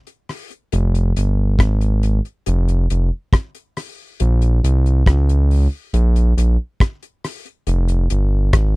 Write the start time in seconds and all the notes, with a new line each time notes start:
0.07 closed hi-hat
0.29 cross-stick, open hi-hat
0.51 closed hi-hat
0.72 F1, closed hi-hat
0.95 closed hi-hat
1.16 G1, closed hi-hat
1.59 G#1, kick, cross-stick, closed hi-hat
1.81 closed hi-hat
2.03 closed hi-hat
2.25 closed hi-hat
2.46 F1, closed hi-hat
2.68 closed hi-hat
2.90 F1, closed hi-hat
3.33 kick, cross-stick, closed hi-hat
3.55 closed hi-hat
3.77 cross-stick, open hi-hat
4.20 A#1, closed hi-hat
4.42 closed hi-hat
4.64 C2, closed hi-hat
4.86 closed hi-hat
5.06 C#2, kick, cross-stick, closed hi-hat
5.29 closed hi-hat
5.51 open hi-hat
5.93 A#1, closed hi-hat
6.16 closed hi-hat
6.37 A#1, closed hi-hat
6.80 kick, cross-stick, closed hi-hat
7.03 closed hi-hat
7.24 cross-stick, open hi-hat
7.46 closed hi-hat
7.67 F1, closed hi-hat
7.88 closed hi-hat
8.10 G1, closed hi-hat
8.53 G#1, kick, cross-stick, closed hi-hat